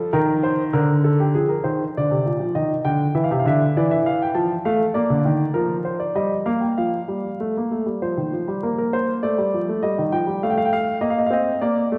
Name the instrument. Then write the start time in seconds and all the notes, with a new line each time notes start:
grand piano
Already playing: F3 A4
0.13 D#3 A#4
0.43 C5
0.73 D3 A#4
1.04 A4
1.20 G4
1.35 F3 G#4
1.49 A#4
1.64 D#3 C5
1.97 D3 D5
2.11 C3
2.26 A#2
2.40 F3
2.55 D#3 D#5
2.85 D3 G5
3.15 E3 E5
3.24 F5
3.31 C3 E5
3.39 F5
3.45 D3 E5
3.77 E3 D5
3.91 E5
4.06 F5
4.22 G5
4.35 F3 A5
4.65 A3 F5
4.94 A#3 D5
5.10 D3
5.25 D#3
5.54 F3 A#4
5.85 C5
6.00 D5
6.15 G3 D#5
6.46 A#3 F5
6.61 G5
6.78 F3 F5
7.08 G3
7.40 A3
7.57 A#3
7.71 A3
7.86 G3
8.02 F3 C5
8.17 D#3
8.33 F3
8.48 G3
8.63 A#3 A#4
8.78 A#4
8.93 C5
9.23 A3 D5
9.38 G3
9.54 F3
9.69 A3
9.83 G3 D#5
9.98 D#3
10.12 F3 G5
10.27 G3
10.43 A3 F5
10.50 G5
10.58 F5
10.65 G5
10.73 F5
11.01 A#3 D#5
11.10 F5
11.18 D#5
11.26 F5
11.30 C4 D#5
11.61 A#3 D5
11.92 A3